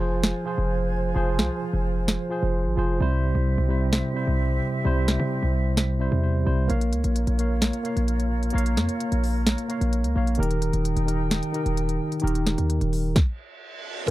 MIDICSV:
0, 0, Header, 1, 7, 480
1, 0, Start_track
1, 0, Tempo, 461538
1, 1204, Time_signature, 4, 2, 24, 8
1, 14670, End_track
2, 0, Start_track
2, 0, Title_t, "Flute section"
2, 0, Program_c, 0, 73
2, 0, Note_on_c, 0, 65, 85
2, 0, Note_on_c, 0, 72, 81
2, 0, Note_on_c, 0, 80, 97
2, 3086, Note_off_c, 0, 65, 0
2, 3086, Note_off_c, 0, 72, 0
2, 3086, Note_off_c, 0, 80, 0
2, 3124, Note_on_c, 0, 67, 80
2, 3125, Note_on_c, 0, 60, 87
2, 3125, Note_on_c, 0, 76, 98
2, 6642, Note_off_c, 0, 60, 0
2, 6648, Note_off_c, 0, 76, 0
2, 6659, Note_off_c, 0, 67, 0
2, 6964, Note_on_c, 0, 65, 87
2, 6964, Note_on_c, 0, 70, 80
2, 6964, Note_on_c, 0, 73, 99
2, 10766, Note_off_c, 0, 65, 0
2, 10766, Note_off_c, 0, 73, 0
2, 10804, Note_on_c, 0, 63, 87
2, 10804, Note_on_c, 0, 79, 94
2, 13643, Note_off_c, 0, 70, 0
2, 13655, Note_off_c, 0, 63, 0
2, 13655, Note_off_c, 0, 79, 0
2, 14670, End_track
3, 0, Start_track
3, 0, Title_t, "Synth keys"
3, 0, Program_c, 1, 88
3, 14639, Note_on_c, 1, 70, 101
3, 14670, Note_off_c, 1, 70, 0
3, 14670, End_track
4, 0, Start_track
4, 0, Title_t, "Tine electric piano"
4, 0, Program_c, 2, 4
4, 0, Control_c, 2, 64, 127
4, 0, Note_on_c, 2, 53, 88
4, 0, Note_on_c, 2, 65, 109
4, 0, Note_on_c, 2, 68, 102
4, 0, Note_on_c, 2, 72, 126
4, 3, Note_off_c, 2, 65, 0
4, 3, Note_on_c, 2, 65, 81
4, 11, Note_off_c, 2, 68, 0
4, 11, Note_on_c, 2, 68, 79
4, 20, Note_off_c, 2, 72, 0
4, 20, Note_on_c, 2, 72, 83
4, 438, Note_off_c, 2, 53, 0
4, 442, Note_off_c, 2, 65, 0
4, 447, Note_off_c, 2, 68, 0
4, 451, Note_off_c, 2, 72, 0
4, 466, Note_on_c, 2, 53, 86
4, 475, Note_on_c, 2, 65, 84
4, 484, Note_on_c, 2, 68, 84
4, 492, Note_on_c, 2, 72, 94
4, 1133, Note_off_c, 2, 53, 0
4, 1138, Note_off_c, 2, 65, 0
4, 1142, Note_off_c, 2, 68, 0
4, 1147, Note_off_c, 2, 72, 0
4, 1190, Note_on_c, 2, 53, 117
4, 1199, Note_on_c, 2, 65, 105
4, 1207, Note_on_c, 2, 68, 110
4, 1216, Note_on_c, 2, 72, 127
4, 2075, Note_off_c, 2, 53, 0
4, 2079, Note_off_c, 2, 65, 0
4, 2084, Note_off_c, 2, 68, 0
4, 2088, Note_off_c, 2, 72, 0
4, 2388, Note_on_c, 2, 53, 89
4, 2397, Note_on_c, 2, 65, 83
4, 2405, Note_on_c, 2, 68, 90
4, 2414, Note_on_c, 2, 72, 102
4, 2835, Note_off_c, 2, 53, 0
4, 2839, Note_off_c, 2, 65, 0
4, 2844, Note_off_c, 2, 68, 0
4, 2848, Note_off_c, 2, 72, 0
4, 2872, Note_on_c, 2, 53, 95
4, 2881, Note_on_c, 2, 65, 84
4, 2890, Note_on_c, 2, 68, 82
4, 2899, Note_on_c, 2, 72, 102
4, 3098, Note_off_c, 2, 53, 0
4, 3102, Note_off_c, 2, 65, 0
4, 3106, Note_off_c, 2, 68, 0
4, 3111, Note_off_c, 2, 72, 0
4, 3116, Note_on_c, 2, 48, 119
4, 3125, Note_on_c, 2, 55, 110
4, 3134, Note_on_c, 2, 64, 106
4, 3137, Control_c, 2, 64, 0
4, 3143, Note_on_c, 2, 72, 127
4, 3339, Control_c, 2, 64, 127
4, 3779, Note_off_c, 2, 48, 0
4, 3783, Note_off_c, 2, 55, 0
4, 3787, Note_off_c, 2, 64, 0
4, 3792, Note_off_c, 2, 72, 0
4, 3824, Note_on_c, 2, 48, 84
4, 3833, Note_on_c, 2, 55, 76
4, 3842, Note_on_c, 2, 64, 86
4, 3851, Note_on_c, 2, 72, 92
4, 4273, Note_off_c, 2, 48, 0
4, 4278, Note_off_c, 2, 55, 0
4, 4282, Note_off_c, 2, 64, 0
4, 4287, Note_off_c, 2, 72, 0
4, 4306, Note_on_c, 2, 48, 92
4, 4315, Note_on_c, 2, 55, 73
4, 4324, Note_on_c, 2, 64, 78
4, 4332, Note_on_c, 2, 72, 94
4, 4973, Note_off_c, 2, 48, 0
4, 4978, Note_off_c, 2, 55, 0
4, 4982, Note_off_c, 2, 64, 0
4, 4987, Note_off_c, 2, 72, 0
4, 5033, Note_on_c, 2, 48, 114
4, 5042, Note_on_c, 2, 55, 108
4, 5051, Note_on_c, 2, 64, 103
4, 5060, Note_on_c, 2, 72, 127
4, 5916, Note_off_c, 2, 48, 0
4, 5921, Note_off_c, 2, 55, 0
4, 5925, Note_off_c, 2, 64, 0
4, 5930, Note_off_c, 2, 72, 0
4, 6228, Note_on_c, 2, 48, 84
4, 6237, Note_on_c, 2, 55, 80
4, 6241, Note_on_c, 2, 76, 74
4, 6246, Note_on_c, 2, 64, 77
4, 6255, Note_on_c, 2, 72, 103
4, 6466, Note_off_c, 2, 76, 0
4, 6471, Note_off_c, 2, 72, 0
4, 6483, Note_on_c, 2, 72, 74
4, 6675, Note_off_c, 2, 48, 0
4, 6680, Note_off_c, 2, 55, 0
4, 6684, Note_off_c, 2, 64, 0
4, 6701, Note_on_c, 2, 48, 84
4, 6710, Note_on_c, 2, 55, 88
4, 6715, Note_off_c, 2, 72, 0
4, 6718, Note_on_c, 2, 64, 76
4, 6727, Note_on_c, 2, 72, 102
4, 6932, Note_off_c, 2, 48, 0
4, 6936, Note_off_c, 2, 55, 0
4, 6941, Note_off_c, 2, 64, 0
4, 6945, Note_off_c, 2, 72, 0
4, 6945, Note_on_c, 2, 58, 113
4, 6954, Note_on_c, 2, 70, 108
4, 6962, Note_on_c, 2, 73, 99
4, 6972, Note_on_c, 2, 77, 125
4, 6977, Control_c, 2, 64, 0
4, 7170, Control_c, 2, 64, 127
4, 7613, Note_off_c, 2, 58, 0
4, 7617, Note_off_c, 2, 70, 0
4, 7622, Note_off_c, 2, 73, 0
4, 7626, Note_off_c, 2, 77, 0
4, 7676, Note_on_c, 2, 58, 75
4, 7686, Note_on_c, 2, 70, 76
4, 7694, Note_on_c, 2, 73, 79
4, 7703, Note_on_c, 2, 77, 85
4, 8119, Note_off_c, 2, 58, 0
4, 8124, Note_off_c, 2, 70, 0
4, 8128, Note_off_c, 2, 73, 0
4, 8133, Note_off_c, 2, 77, 0
4, 8149, Note_on_c, 2, 58, 88
4, 8158, Note_on_c, 2, 70, 81
4, 8167, Note_on_c, 2, 73, 76
4, 8176, Note_on_c, 2, 77, 95
4, 8815, Note_off_c, 2, 58, 0
4, 8819, Note_off_c, 2, 70, 0
4, 8824, Note_off_c, 2, 73, 0
4, 8828, Note_off_c, 2, 77, 0
4, 8871, Note_on_c, 2, 58, 117
4, 8879, Note_on_c, 2, 70, 109
4, 8888, Note_on_c, 2, 73, 105
4, 8898, Note_on_c, 2, 77, 127
4, 9755, Note_off_c, 2, 58, 0
4, 9760, Note_off_c, 2, 70, 0
4, 9764, Note_off_c, 2, 73, 0
4, 9769, Note_off_c, 2, 77, 0
4, 10071, Note_on_c, 2, 58, 84
4, 10079, Note_on_c, 2, 70, 76
4, 10089, Note_on_c, 2, 73, 79
4, 10097, Note_on_c, 2, 77, 99
4, 10516, Note_off_c, 2, 58, 0
4, 10521, Note_off_c, 2, 70, 0
4, 10525, Note_off_c, 2, 73, 0
4, 10530, Note_off_c, 2, 77, 0
4, 10558, Note_on_c, 2, 58, 92
4, 10567, Note_on_c, 2, 70, 76
4, 10576, Note_on_c, 2, 73, 80
4, 10585, Note_on_c, 2, 77, 91
4, 10780, Note_off_c, 2, 58, 0
4, 10785, Note_off_c, 2, 70, 0
4, 10789, Note_off_c, 2, 73, 0
4, 10789, Note_on_c, 2, 51, 114
4, 10794, Note_off_c, 2, 77, 0
4, 10798, Note_on_c, 2, 63, 97
4, 10806, Note_on_c, 2, 67, 96
4, 10815, Note_on_c, 2, 70, 119
4, 10816, Control_c, 2, 64, 0
4, 11003, Control_c, 2, 64, 127
4, 11455, Note_off_c, 2, 51, 0
4, 11459, Note_off_c, 2, 63, 0
4, 11464, Note_off_c, 2, 67, 0
4, 11468, Note_off_c, 2, 70, 0
4, 11497, Note_on_c, 2, 51, 81
4, 11506, Note_on_c, 2, 63, 78
4, 11515, Note_on_c, 2, 67, 70
4, 11524, Note_on_c, 2, 70, 98
4, 11950, Note_off_c, 2, 51, 0
4, 11954, Note_off_c, 2, 63, 0
4, 11958, Note_off_c, 2, 67, 0
4, 11963, Note_off_c, 2, 70, 0
4, 11991, Note_on_c, 2, 51, 90
4, 12000, Note_on_c, 2, 63, 78
4, 12008, Note_on_c, 2, 67, 76
4, 12017, Note_on_c, 2, 70, 90
4, 12656, Note_off_c, 2, 51, 0
4, 12660, Note_off_c, 2, 63, 0
4, 12665, Note_off_c, 2, 67, 0
4, 12669, Note_off_c, 2, 70, 0
4, 12704, Note_on_c, 2, 51, 120
4, 12713, Note_on_c, 2, 63, 100
4, 12721, Note_on_c, 2, 67, 98
4, 12730, Note_on_c, 2, 70, 122
4, 13592, Note_off_c, 2, 51, 0
4, 13596, Note_off_c, 2, 63, 0
4, 13601, Note_off_c, 2, 67, 0
4, 13605, Note_off_c, 2, 70, 0
4, 13697, Control_c, 2, 64, 0
4, 14628, Note_on_c, 2, 53, 124
4, 14637, Note_on_c, 2, 65, 114
4, 14670, Note_off_c, 2, 53, 0
4, 14670, Note_off_c, 2, 65, 0
4, 14670, End_track
5, 0, Start_track
5, 0, Title_t, "808-style bass"
5, 0, Program_c, 3, 38
5, 0, Note_on_c, 3, 29, 97
5, 345, Note_off_c, 3, 29, 0
5, 603, Note_on_c, 3, 29, 101
5, 1180, Note_off_c, 3, 29, 0
5, 1203, Note_on_c, 3, 29, 103
5, 1444, Note_on_c, 3, 36, 99
5, 1459, Note_off_c, 3, 29, 0
5, 1558, Note_off_c, 3, 36, 0
5, 1804, Note_on_c, 3, 29, 97
5, 2265, Note_off_c, 3, 29, 0
5, 2524, Note_on_c, 3, 29, 101
5, 2764, Note_on_c, 3, 32, 104
5, 2780, Note_off_c, 3, 29, 0
5, 2878, Note_off_c, 3, 32, 0
5, 2884, Note_on_c, 3, 29, 105
5, 3115, Note_off_c, 3, 29, 0
5, 3124, Note_on_c, 3, 36, 112
5, 3470, Note_off_c, 3, 36, 0
5, 3484, Note_on_c, 3, 36, 99
5, 3714, Note_off_c, 3, 36, 0
5, 3724, Note_on_c, 3, 36, 100
5, 4185, Note_off_c, 3, 36, 0
5, 4444, Note_on_c, 3, 36, 98
5, 4790, Note_off_c, 3, 36, 0
5, 5044, Note_on_c, 3, 36, 108
5, 5390, Note_off_c, 3, 36, 0
5, 5404, Note_on_c, 3, 48, 100
5, 5634, Note_off_c, 3, 48, 0
5, 5644, Note_on_c, 3, 36, 102
5, 6335, Note_off_c, 3, 36, 0
5, 6364, Note_on_c, 3, 40, 95
5, 6709, Note_off_c, 3, 40, 0
5, 6724, Note_on_c, 3, 36, 102
5, 6954, Note_off_c, 3, 36, 0
5, 6964, Note_on_c, 3, 34, 102
5, 7204, Note_on_c, 3, 37, 95
5, 7219, Note_off_c, 3, 34, 0
5, 7318, Note_off_c, 3, 37, 0
5, 7324, Note_on_c, 3, 34, 96
5, 7554, Note_off_c, 3, 34, 0
5, 7563, Note_on_c, 3, 34, 103
5, 8025, Note_off_c, 3, 34, 0
5, 8284, Note_on_c, 3, 34, 98
5, 8860, Note_off_c, 3, 34, 0
5, 8884, Note_on_c, 3, 34, 105
5, 9124, Note_on_c, 3, 41, 101
5, 9140, Note_off_c, 3, 34, 0
5, 9238, Note_off_c, 3, 41, 0
5, 9484, Note_on_c, 3, 34, 99
5, 9945, Note_off_c, 3, 34, 0
5, 10204, Note_on_c, 3, 34, 104
5, 10444, Note_on_c, 3, 37, 103
5, 10460, Note_off_c, 3, 34, 0
5, 10558, Note_off_c, 3, 37, 0
5, 10564, Note_on_c, 3, 34, 101
5, 10794, Note_off_c, 3, 34, 0
5, 10804, Note_on_c, 3, 27, 108
5, 11150, Note_off_c, 3, 27, 0
5, 11164, Note_on_c, 3, 27, 98
5, 11395, Note_off_c, 3, 27, 0
5, 11404, Note_on_c, 3, 27, 103
5, 11865, Note_off_c, 3, 27, 0
5, 12125, Note_on_c, 3, 27, 100
5, 12470, Note_off_c, 3, 27, 0
5, 12725, Note_on_c, 3, 27, 110
5, 13070, Note_off_c, 3, 27, 0
5, 13084, Note_on_c, 3, 39, 95
5, 13315, Note_off_c, 3, 39, 0
5, 13325, Note_on_c, 3, 27, 103
5, 13670, Note_off_c, 3, 27, 0
5, 14670, End_track
6, 0, Start_track
6, 0, Title_t, "Reverse cymbal"
6, 0, Program_c, 4, 119
6, 13684, Note_on_c, 4, 60, 81
6, 14644, Note_off_c, 4, 60, 0
6, 14670, End_track
7, 0, Start_track
7, 0, Title_t, "Drums"
7, 244, Note_on_c, 9, 38, 114
7, 348, Note_off_c, 9, 38, 0
7, 1444, Note_on_c, 9, 38, 95
7, 1548, Note_off_c, 9, 38, 0
7, 2164, Note_on_c, 9, 38, 117
7, 2268, Note_off_c, 9, 38, 0
7, 4084, Note_on_c, 9, 38, 121
7, 4188, Note_off_c, 9, 38, 0
7, 5284, Note_on_c, 9, 38, 93
7, 5388, Note_off_c, 9, 38, 0
7, 6004, Note_on_c, 9, 38, 116
7, 6108, Note_off_c, 9, 38, 0
7, 6964, Note_on_c, 9, 42, 66
7, 7068, Note_off_c, 9, 42, 0
7, 7086, Note_on_c, 9, 42, 65
7, 7190, Note_off_c, 9, 42, 0
7, 7203, Note_on_c, 9, 42, 76
7, 7307, Note_off_c, 9, 42, 0
7, 7322, Note_on_c, 9, 42, 67
7, 7426, Note_off_c, 9, 42, 0
7, 7443, Note_on_c, 9, 42, 81
7, 7547, Note_off_c, 9, 42, 0
7, 7563, Note_on_c, 9, 42, 54
7, 7667, Note_off_c, 9, 42, 0
7, 7684, Note_on_c, 9, 42, 78
7, 7788, Note_off_c, 9, 42, 0
7, 7923, Note_on_c, 9, 38, 118
7, 7924, Note_on_c, 9, 42, 85
7, 8027, Note_off_c, 9, 38, 0
7, 8028, Note_off_c, 9, 42, 0
7, 8043, Note_on_c, 9, 42, 62
7, 8147, Note_off_c, 9, 42, 0
7, 8163, Note_on_c, 9, 42, 68
7, 8267, Note_off_c, 9, 42, 0
7, 8286, Note_on_c, 9, 42, 55
7, 8390, Note_off_c, 9, 42, 0
7, 8404, Note_on_c, 9, 42, 75
7, 8508, Note_off_c, 9, 42, 0
7, 8524, Note_on_c, 9, 42, 63
7, 8628, Note_off_c, 9, 42, 0
7, 8764, Note_on_c, 9, 42, 49
7, 8844, Note_off_c, 9, 42, 0
7, 8844, Note_on_c, 9, 42, 66
7, 8924, Note_off_c, 9, 42, 0
7, 8924, Note_on_c, 9, 42, 81
7, 9006, Note_off_c, 9, 42, 0
7, 9006, Note_on_c, 9, 42, 66
7, 9110, Note_off_c, 9, 42, 0
7, 9124, Note_on_c, 9, 38, 95
7, 9124, Note_on_c, 9, 42, 78
7, 9228, Note_off_c, 9, 38, 0
7, 9228, Note_off_c, 9, 42, 0
7, 9242, Note_on_c, 9, 42, 63
7, 9346, Note_off_c, 9, 42, 0
7, 9365, Note_on_c, 9, 42, 80
7, 9469, Note_off_c, 9, 42, 0
7, 9484, Note_on_c, 9, 42, 56
7, 9588, Note_off_c, 9, 42, 0
7, 9605, Note_on_c, 9, 46, 84
7, 9709, Note_off_c, 9, 46, 0
7, 9844, Note_on_c, 9, 38, 117
7, 9846, Note_on_c, 9, 42, 82
7, 9948, Note_off_c, 9, 38, 0
7, 9950, Note_off_c, 9, 42, 0
7, 9964, Note_on_c, 9, 42, 62
7, 10068, Note_off_c, 9, 42, 0
7, 10084, Note_on_c, 9, 42, 67
7, 10188, Note_off_c, 9, 42, 0
7, 10206, Note_on_c, 9, 42, 54
7, 10310, Note_off_c, 9, 42, 0
7, 10325, Note_on_c, 9, 42, 72
7, 10429, Note_off_c, 9, 42, 0
7, 10444, Note_on_c, 9, 42, 62
7, 10548, Note_off_c, 9, 42, 0
7, 10684, Note_on_c, 9, 42, 49
7, 10764, Note_off_c, 9, 42, 0
7, 10764, Note_on_c, 9, 42, 65
7, 10844, Note_off_c, 9, 42, 0
7, 10844, Note_on_c, 9, 42, 83
7, 10926, Note_off_c, 9, 42, 0
7, 10926, Note_on_c, 9, 42, 64
7, 11030, Note_off_c, 9, 42, 0
7, 11044, Note_on_c, 9, 42, 81
7, 11148, Note_off_c, 9, 42, 0
7, 11163, Note_on_c, 9, 42, 67
7, 11267, Note_off_c, 9, 42, 0
7, 11285, Note_on_c, 9, 42, 79
7, 11389, Note_off_c, 9, 42, 0
7, 11404, Note_on_c, 9, 42, 56
7, 11508, Note_off_c, 9, 42, 0
7, 11526, Note_on_c, 9, 42, 78
7, 11630, Note_off_c, 9, 42, 0
7, 11764, Note_on_c, 9, 38, 113
7, 11766, Note_on_c, 9, 42, 87
7, 11868, Note_off_c, 9, 38, 0
7, 11870, Note_off_c, 9, 42, 0
7, 11884, Note_on_c, 9, 42, 63
7, 11988, Note_off_c, 9, 42, 0
7, 12004, Note_on_c, 9, 42, 66
7, 12108, Note_off_c, 9, 42, 0
7, 12126, Note_on_c, 9, 42, 54
7, 12230, Note_off_c, 9, 42, 0
7, 12245, Note_on_c, 9, 42, 75
7, 12349, Note_off_c, 9, 42, 0
7, 12364, Note_on_c, 9, 42, 60
7, 12468, Note_off_c, 9, 42, 0
7, 12605, Note_on_c, 9, 42, 49
7, 12685, Note_off_c, 9, 42, 0
7, 12685, Note_on_c, 9, 42, 67
7, 12765, Note_off_c, 9, 42, 0
7, 12765, Note_on_c, 9, 42, 84
7, 12846, Note_off_c, 9, 42, 0
7, 12846, Note_on_c, 9, 42, 65
7, 12950, Note_off_c, 9, 42, 0
7, 12964, Note_on_c, 9, 42, 77
7, 12965, Note_on_c, 9, 38, 95
7, 13068, Note_off_c, 9, 42, 0
7, 13069, Note_off_c, 9, 38, 0
7, 13084, Note_on_c, 9, 42, 66
7, 13188, Note_off_c, 9, 42, 0
7, 13205, Note_on_c, 9, 42, 79
7, 13309, Note_off_c, 9, 42, 0
7, 13325, Note_on_c, 9, 42, 53
7, 13429, Note_off_c, 9, 42, 0
7, 13446, Note_on_c, 9, 46, 86
7, 13550, Note_off_c, 9, 46, 0
7, 13685, Note_on_c, 9, 36, 107
7, 13685, Note_on_c, 9, 38, 89
7, 13789, Note_off_c, 9, 36, 0
7, 13789, Note_off_c, 9, 38, 0
7, 14670, End_track
0, 0, End_of_file